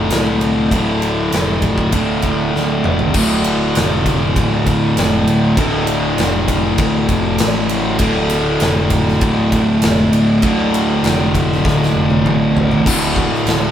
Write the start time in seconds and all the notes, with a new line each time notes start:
Already playing: D2 A2 D3
0.10 C2, snare, ride
0.41 ride
0.71 D1 D2 A2 D3, kick, ride
1.02 ride
1.32 F1, snare, ride
1.62 kick, ride
1.78 kick
1.92 D1 D2 A2 D3, kick, ride
2.22 kick, ride
2.54 D1, snare
2.84 F1, mid tom
2.99 floor tom
3.14 D1 D2 A2 D3, kick, crash
3.44 ride
3.75 F1, snare, ride
4.06 kick, snare, ride
4.36 D1, kick, ride
4.67 kick, ride
4.96 F1, snare, ride
5.27 D1, ride
5.57 D1 D2 A2 D3, kick, ride
5.87 ride
6.17 F1, snare, ride
6.48 kick, ride
6.78 D1, kick, ride
7.09 F1, kick, ride
7.38 A1, snare, ride
7.69 ride
7.99 D1 D2 A2 D3, kick, ride
8.30 ride
8.60 F1, snare, ride
8.90 kick, snare, ride
9.08 snare
9.21 D1, kick, ride
9.52 kick, ride
9.82 F1, snare, ride
10.12 D1, ride
10.42 D1 D2 A2 D3, kick, ride
10.74 ride
11.03 F1, snare, ride
11.35 kick, ride
11.52 snare
11.65 D1, kick, snare
11.83 snare
11.94 F1
12.10 high tom
12.24 A1, mid tom
12.57 floor tom
12.72 floor tom
12.86 D1 D2 A2 D3, kick, crash
13.16 kick
13.34 snare
13.46 D1, snare, crash